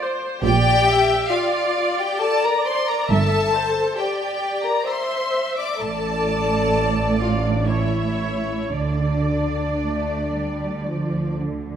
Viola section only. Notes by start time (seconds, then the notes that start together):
0.01 C5
0.44 D5
0.88 E5
1.32 D5
2.22 D5
3.09 E5
3.54 C5
3.98 D5
4.87 E5
5.80 D5
7.71 C#5
8.74 D5